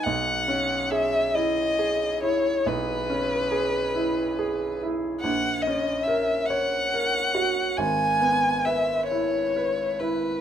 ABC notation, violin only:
X:1
M:12/8
L:1/8
Q:3/8=46
K:C#dor
V:1 name="Violin"
f2 e d2 c B4- B z | f d e f3 g2 e c2 B |]